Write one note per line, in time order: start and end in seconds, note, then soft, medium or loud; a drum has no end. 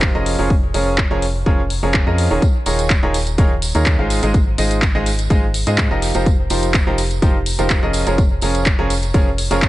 0.00 0.12 F1 medium
0.00 0.11 F3 medium
0.00 0.11 D#4 medium
0.00 0.11 F4 medium
0.00 0.11 G4 medium
0.00 0.11 A#4 medium
0.00 0.11 C5 medium
0.00 kick loud
0.00 clap loud
0.15 0.36 F1 medium
0.15 0.35 F3 medium
0.15 0.35 C#4 medium
0.15 0.35 F4 medium
0.15 0.35 G#4 medium
0.15 0.35 A#4 medium
0.15 0.35 D#5 medium
0.26 open hi-hat medium
0.39 0.72 F1 loud
0.39 0.51 F3 medium
0.39 0.51 C#4 medium
0.39 0.51 F4 medium
0.39 0.51 G#4 medium
0.39 0.51 A#4 medium
0.39 0.51 C#5 medium
0.50 kick loud
0.74 1.08 F1 loud
0.74 0.95 F3 medium
0.74 0.95 C#4 medium
0.74 0.95 F4 medium
0.74 0.95 G#4 medium
0.74 0.95 A#4 medium
0.74 0.95 C#5 medium
0.74 open hi-hat medium
0.98 kick loud
0.98 clap loud
1.11 1.44 F1 loud
1.11 1.23 F3 medium
1.11 1.23 C#4 medium
1.11 1.23 F4 medium
1.11 1.23 G#4 medium
1.11 1.23 A#4 medium
1.11 1.23 C#5 loud
1.22 open hi-hat medium
1.46 1.59 F3 medium
1.46 1.59 C#4 medium
1.46 1.60 F4 medium
1.46 1.59 G#4 medium
1.46 1.59 A#4 medium
1.46 1.60 C#5 loud
1.46 kick loud
1.70 open hi-hat medium
1.83 2.04 F1 medium
1.83 2.03 F3 medium
1.83 2.03 C#4 medium
1.83 2.03 F4 medium
1.83 2.03 G#4 medium
1.83 2.03 A#4 medium
1.83 2.03 C#5 medium
1.94 kick loud
1.94 clap loud
2.07 2.28 F2 medium
2.07 2.27 F3 medium
2.07 2.27 C#4 medium
2.07 2.27 F4 medium
2.07 2.27 G#4 medium
2.07 2.27 A#4 medium
2.07 2.27 D#5 medium
2.18 open hi-hat medium
2.31 2.39 D#1 medium
2.31 2.41 D#3 medium
2.31 2.41 C#4 medium
2.31 2.41 F4 medium
2.31 2.41 G#4 medium
2.31 2.41 A#4 medium
2.31 2.41 C#5 medium
2.42 kick loud
2.42 closed hi-hat medium
2.42 tambourine soft
2.66 3.00 D#1 medium
2.66 2.87 D#3 medium
2.66 2.87 D#4 medium
2.66 2.87 F4 medium
2.66 2.87 G#4 medium
2.66 2.87 A#4 medium
2.66 2.87 C#5 medium
2.66 open hi-hat loud
2.66 tambourine medium
2.79 closed hi-hat medium
2.79 tambourine medium
2.90 kick loud
2.90 clap loud
2.90 closed hi-hat soft
3.03 3.36 D#1 loud
3.03 3.15 D#3 medium
3.03 3.15 D#4 medium
3.03 3.15 F4 medium
3.03 3.15 G#4 medium
3.03 3.15 A#4 medium
3.03 3.15 C#5 loud
3.14 open hi-hat medium
3.14 tambourine medium
3.27 closed hi-hat medium
3.27 tambourine soft
3.38 3.72 D#1 medium
3.38 3.51 D#3 medium
3.38 3.51 D#4 medium
3.38 3.52 F4 medium
3.38 3.51 G#4 medium
3.38 3.51 A#4 medium
3.38 3.51 C#5 loud
3.38 kick loud
3.38 closed hi-hat medium
3.38 tambourine soft
3.62 open hi-hat loud
3.62 tambourine medium
3.75 3.96 D#2 medium
3.75 3.95 D#3 medium
3.75 3.95 D#4 medium
3.75 3.95 F4 medium
3.75 3.95 G#4 medium
3.75 3.95 A#4 medium
3.75 3.95 C#5 medium
3.75 closed hi-hat medium
3.75 tambourine medium
3.86 kick loud
3.86 clap loud
3.86 closed hi-hat medium
3.99 4.20 G#1 medium
3.99 4.19 G#3 medium
3.99 4.19 D#4 medium
3.99 4.19 F4 medium
3.99 4.19 G#4 medium
3.99 4.19 C5 medium
3.99 4.19 F5 medium
4.10 open hi-hat medium
4.10 tambourine loud
4.23 4.56 G#1 loud
4.23 4.35 G#3 medium
4.23 4.35 D#4 medium
4.23 4.35 F4 medium
4.23 4.35 G#4 medium
4.23 4.35 C5 medium
4.23 4.35 D#5 medium
4.23 closed hi-hat medium
4.23 tambourine soft
4.34 kick loud
4.34 closed hi-hat medium
4.34 tambourine soft
4.58 4.92 G#1 loud
4.58 4.79 G#3 medium
4.58 4.79 D#4 medium
4.58 4.79 F4 medium
4.58 4.79 G#4 medium
4.58 4.79 C5 medium
4.58 4.79 D#5 medium
4.58 open hi-hat loud
4.58 tambourine medium
4.71 closed hi-hat medium
4.71 tambourine medium
4.81 kick loud
4.81 clap loud
4.81 closed hi-hat soft
4.81 tambourine soft
4.95 5.28 G#1 medium
4.95 5.07 G#3 medium
4.95 5.07 D#4 medium
4.95 5.07 F4 medium
4.95 5.07 G#4 medium
4.95 5.07 C5 medium
4.95 5.07 D#5 loud
5.06 open hi-hat medium
5.06 tambourine medium
5.19 closed hi-hat medium
5.19 tambourine medium
5.30 5.64 G#1 loud
5.30 5.44 G#3 medium
5.30 5.44 D#4 medium
5.30 5.44 F4 medium
5.30 5.44 G#4 medium
5.30 5.44 C5 medium
5.30 5.44 D#5 loud
5.30 kick loud
5.30 closed hi-hat medium
5.30 tambourine soft
5.54 open hi-hat loud
5.54 tambourine medium
5.67 5.88 G#2 medium
5.67 5.87 G#3 medium
5.67 5.87 D#4 medium
5.67 5.87 F4 medium
5.67 5.87 G#4 medium
5.67 5.87 C5 medium
5.67 5.87 D#5 medium
5.67 closed hi-hat medium
5.67 tambourine medium
5.78 kick loud
5.78 clap loud
5.78 closed hi-hat medium
5.91 6.12 F1 medium
5.91 6.11 F3 medium
5.91 6.11 D#4 medium
5.91 6.11 F4 medium
5.91 6.11 G4 medium
5.91 6.11 A#4 medium
5.91 6.11 D#5 medium
6.02 open hi-hat medium
6.02 tambourine medium
6.14 6.48 F1 loud
6.14 6.27 F3 medium
6.14 6.27 D#4 medium
6.14 6.27 F4 medium
6.14 6.27 G4 medium
6.14 6.27 A#4 medium
6.14 6.27 C5 medium
6.14 closed hi-hat medium
6.14 tambourine medium
6.26 kick loud
6.26 closed hi-hat medium
6.26 tambourine soft
6.50 6.84 F1 medium
6.50 6.71 F3 medium
6.50 6.71 D#4 medium
6.50 6.71 F4 medium
6.50 6.71 G4 medium
6.50 6.71 A#4 medium
6.50 6.71 C5 medium
6.50 open hi-hat loud
6.50 tambourine loud
6.63 closed hi-hat medium
6.63 tambourine medium
6.74 kick loud
6.74 clap loud
6.74 closed hi-hat soft
6.74 tambourine soft
6.87 7.20 F1 loud
6.87 6.99 F3 medium
6.87 6.99 D#4 medium
6.87 6.99 F4 medium
6.87 6.99 G4 medium
6.87 6.99 A#4 medium
6.87 6.99 C5 loud
6.98 open hi-hat medium
6.98 tambourine medium
7.11 closed hi-hat medium
7.11 tambourine medium
7.22 7.36 F3 medium
7.22 7.35 D#4 medium
7.22 7.35 F4 medium
7.22 7.35 G4 medium
7.22 7.35 A#4 medium
7.22 7.35 C5 loud
7.22 kick loud
7.22 closed hi-hat soft
7.22 tambourine soft
7.46 open hi-hat loud
7.46 tambourine medium
7.59 7.80 F1 medium
7.59 7.79 F3 medium
7.59 7.79 D#4 medium
7.59 7.79 F4 medium
7.59 7.79 G4 medium
7.59 7.79 A#4 medium
7.59 7.79 C5 medium
7.59 closed hi-hat medium
7.59 tambourine medium
7.70 kick loud
7.70 clap loud
7.70 closed hi-hat medium
7.70 tambourine soft
7.83 8.04 F1 medium
7.83 8.03 F3 medium
7.83 8.03 C#4 medium
7.83 8.03 F4 medium
7.83 8.03 G#4 medium
7.83 8.03 A#4 medium
7.83 8.03 D#5 medium
7.93 open hi-hat medium
7.93 tambourine medium
8.07 8.40 F1 medium
8.07 8.19 F3 medium
8.07 8.19 C#4 medium
8.07 8.19 F4 medium
8.07 8.19 G#4 medium
8.07 8.19 A#4 medium
8.07 8.19 C#5 medium
8.07 closed hi-hat medium
8.07 tambourine medium
8.18 kick loud
8.18 closed hi-hat soft
8.18 tambourine soft
8.41 8.76 F1 loud
8.41 8.63 F3 medium
8.41 8.63 C#4 medium
8.41 8.63 F4 medium
8.41 8.63 G#4 medium
8.41 8.63 A#4 medium
8.41 8.63 C#5 medium
8.41 open hi-hat loud
8.41 tambourine medium
8.55 closed hi-hat medium
8.55 tambourine medium
8.66 kick loud
8.66 clap loud
8.66 closed hi-hat soft
8.66 tambourine soft
8.79 9.12 F1 loud
8.79 8.91 F3 medium
8.79 8.91 C#4 medium
8.79 8.91 F4 medium
8.79 8.91 G#4 medium
8.79 8.91 A#4 medium
8.79 8.91 C#5 loud
8.90 open hi-hat medium
8.90 tambourine loud
9.03 closed hi-hat medium
9.03 tambourine soft
9.14 9.28 F3 medium
9.14 9.27 C#4 medium
9.14 9.27 F4 medium
9.14 9.27 G#4 medium
9.14 9.28 A#4 medium
9.14 9.27 C#5 loud
9.14 kick loud
9.14 closed hi-hat soft
9.14 tambourine soft
9.38 open hi-hat loud
9.38 tambourine medium
9.51 9.69 F1 medium
9.51 9.69 F3 medium
9.51 9.69 C#4 medium
9.51 9.69 F4 medium
9.51 9.69 G#4 medium
9.51 9.69 A#4 medium
9.51 9.69 C#5 medium
9.51 closed hi-hat medium
9.51 tambourine medium
9.62 kick loud
9.62 clap loud
9.62 closed hi-hat soft
9.62 tambourine soft